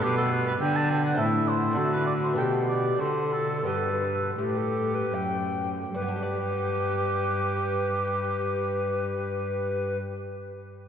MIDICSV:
0, 0, Header, 1, 5, 480
1, 0, Start_track
1, 0, Key_signature, 1, "major"
1, 0, Tempo, 587659
1, 25, Time_signature, 3, 2, 24, 8
1, 1946, Tempo, 645856
1, 2906, Tempo, 705882
1, 3386, Tempo, 751880
1, 3866, Tempo, 811908
1, 4346, Tempo, 831025
1, 7199, End_track
2, 0, Start_track
2, 0, Title_t, "Oboe"
2, 0, Program_c, 0, 68
2, 24, Note_on_c, 0, 67, 89
2, 139, Note_off_c, 0, 67, 0
2, 144, Note_on_c, 0, 69, 82
2, 251, Note_off_c, 0, 69, 0
2, 390, Note_on_c, 0, 71, 72
2, 441, Note_off_c, 0, 71, 0
2, 496, Note_on_c, 0, 79, 90
2, 622, Note_on_c, 0, 81, 81
2, 634, Note_off_c, 0, 79, 0
2, 731, Note_off_c, 0, 81, 0
2, 736, Note_on_c, 0, 79, 82
2, 849, Note_off_c, 0, 79, 0
2, 854, Note_on_c, 0, 78, 74
2, 964, Note_on_c, 0, 76, 85
2, 977, Note_off_c, 0, 78, 0
2, 1211, Note_on_c, 0, 72, 73
2, 1223, Note_off_c, 0, 76, 0
2, 1455, Note_on_c, 0, 69, 84
2, 1467, Note_off_c, 0, 72, 0
2, 1574, Note_off_c, 0, 69, 0
2, 1578, Note_on_c, 0, 71, 62
2, 1681, Note_off_c, 0, 71, 0
2, 1686, Note_on_c, 0, 74, 73
2, 1744, Note_off_c, 0, 74, 0
2, 1822, Note_on_c, 0, 72, 61
2, 1878, Note_off_c, 0, 72, 0
2, 1942, Note_on_c, 0, 79, 68
2, 2047, Note_off_c, 0, 79, 0
2, 2171, Note_on_c, 0, 74, 65
2, 2407, Note_on_c, 0, 72, 71
2, 2418, Note_off_c, 0, 74, 0
2, 2652, Note_on_c, 0, 69, 61
2, 2663, Note_off_c, 0, 72, 0
2, 2896, Note_off_c, 0, 69, 0
2, 2901, Note_on_c, 0, 69, 66
2, 3207, Note_off_c, 0, 69, 0
2, 3387, Note_on_c, 0, 67, 53
2, 4079, Note_off_c, 0, 67, 0
2, 4344, Note_on_c, 0, 67, 73
2, 6666, Note_off_c, 0, 67, 0
2, 7199, End_track
3, 0, Start_track
3, 0, Title_t, "Recorder"
3, 0, Program_c, 1, 74
3, 26, Note_on_c, 1, 71, 71
3, 509, Note_on_c, 1, 62, 66
3, 522, Note_off_c, 1, 71, 0
3, 973, Note_off_c, 1, 62, 0
3, 978, Note_on_c, 1, 64, 58
3, 1446, Note_on_c, 1, 66, 60
3, 1459, Note_off_c, 1, 64, 0
3, 1940, Note_on_c, 1, 69, 59
3, 1952, Note_off_c, 1, 66, 0
3, 1977, Note_on_c, 1, 67, 64
3, 1984, Note_off_c, 1, 69, 0
3, 2403, Note_off_c, 1, 67, 0
3, 2407, Note_on_c, 1, 69, 55
3, 2903, Note_on_c, 1, 71, 53
3, 2914, Note_off_c, 1, 69, 0
3, 3336, Note_off_c, 1, 71, 0
3, 3387, Note_on_c, 1, 67, 50
3, 3510, Note_on_c, 1, 69, 48
3, 3520, Note_off_c, 1, 67, 0
3, 3748, Note_on_c, 1, 71, 51
3, 3758, Note_off_c, 1, 69, 0
3, 3873, Note_on_c, 1, 79, 54
3, 3882, Note_off_c, 1, 71, 0
3, 4197, Note_off_c, 1, 79, 0
3, 4351, Note_on_c, 1, 71, 49
3, 6673, Note_off_c, 1, 71, 0
3, 7199, End_track
4, 0, Start_track
4, 0, Title_t, "Lute"
4, 0, Program_c, 2, 24
4, 0, Note_on_c, 2, 59, 50
4, 0, Note_on_c, 2, 62, 51
4, 14, Note_on_c, 2, 67, 55
4, 23, Note_on_c, 2, 47, 56
4, 466, Note_off_c, 2, 47, 0
4, 504, Note_on_c, 2, 50, 55
4, 924, Note_off_c, 2, 59, 0
4, 930, Note_off_c, 2, 62, 0
4, 935, Note_on_c, 2, 60, 45
4, 938, Note_off_c, 2, 67, 0
4, 941, Note_off_c, 2, 50, 0
4, 943, Note_on_c, 2, 64, 44
4, 959, Note_on_c, 2, 69, 44
4, 966, Note_on_c, 2, 45, 54
4, 1402, Note_on_c, 2, 57, 47
4, 1408, Note_off_c, 2, 60, 0
4, 1412, Note_on_c, 2, 62, 43
4, 1415, Note_off_c, 2, 45, 0
4, 1421, Note_off_c, 2, 64, 0
4, 1426, Note_on_c, 2, 66, 42
4, 1429, Note_off_c, 2, 69, 0
4, 1435, Note_on_c, 2, 50, 48
4, 1903, Note_off_c, 2, 62, 0
4, 1906, Note_off_c, 2, 50, 0
4, 1906, Note_off_c, 2, 57, 0
4, 1906, Note_on_c, 2, 59, 42
4, 1918, Note_off_c, 2, 66, 0
4, 1921, Note_on_c, 2, 62, 38
4, 1931, Note_on_c, 2, 67, 39
4, 1943, Note_on_c, 2, 47, 46
4, 2379, Note_on_c, 2, 57, 36
4, 2381, Note_off_c, 2, 59, 0
4, 2382, Note_off_c, 2, 47, 0
4, 2383, Note_off_c, 2, 62, 0
4, 2392, Note_on_c, 2, 62, 37
4, 2393, Note_off_c, 2, 67, 0
4, 2399, Note_on_c, 2, 66, 36
4, 2411, Note_on_c, 2, 50, 40
4, 2874, Note_off_c, 2, 57, 0
4, 2874, Note_off_c, 2, 62, 0
4, 2876, Note_off_c, 2, 50, 0
4, 2877, Note_on_c, 2, 59, 35
4, 2884, Note_off_c, 2, 66, 0
4, 2888, Note_on_c, 2, 62, 37
4, 2898, Note_on_c, 2, 67, 33
4, 2909, Note_on_c, 2, 43, 44
4, 3358, Note_off_c, 2, 59, 0
4, 3361, Note_off_c, 2, 43, 0
4, 3363, Note_off_c, 2, 62, 0
4, 3390, Note_on_c, 2, 45, 35
4, 3843, Note_off_c, 2, 45, 0
4, 3866, Note_on_c, 2, 42, 36
4, 4319, Note_off_c, 2, 67, 0
4, 4323, Note_off_c, 2, 42, 0
4, 4347, Note_on_c, 2, 55, 41
4, 4390, Note_on_c, 2, 59, 44
4, 4427, Note_on_c, 2, 62, 46
4, 4471, Note_on_c, 2, 67, 42
4, 4507, Note_off_c, 2, 67, 0
4, 4509, Note_on_c, 2, 74, 49
4, 6669, Note_off_c, 2, 55, 0
4, 6712, Note_off_c, 2, 59, 0
4, 6749, Note_off_c, 2, 62, 0
4, 6831, Note_off_c, 2, 74, 0
4, 7199, End_track
5, 0, Start_track
5, 0, Title_t, "Cello"
5, 0, Program_c, 3, 42
5, 24, Note_on_c, 3, 47, 72
5, 490, Note_off_c, 3, 47, 0
5, 497, Note_on_c, 3, 50, 74
5, 961, Note_off_c, 3, 50, 0
5, 968, Note_on_c, 3, 45, 58
5, 1448, Note_on_c, 3, 50, 65
5, 1460, Note_off_c, 3, 45, 0
5, 1940, Note_off_c, 3, 50, 0
5, 1945, Note_on_c, 3, 47, 55
5, 2404, Note_off_c, 3, 47, 0
5, 2414, Note_on_c, 3, 50, 49
5, 2897, Note_off_c, 3, 50, 0
5, 2907, Note_on_c, 3, 43, 52
5, 3378, Note_off_c, 3, 43, 0
5, 3386, Note_on_c, 3, 45, 50
5, 3857, Note_off_c, 3, 45, 0
5, 3864, Note_on_c, 3, 42, 48
5, 4336, Note_off_c, 3, 42, 0
5, 4346, Note_on_c, 3, 43, 55
5, 6668, Note_off_c, 3, 43, 0
5, 7199, End_track
0, 0, End_of_file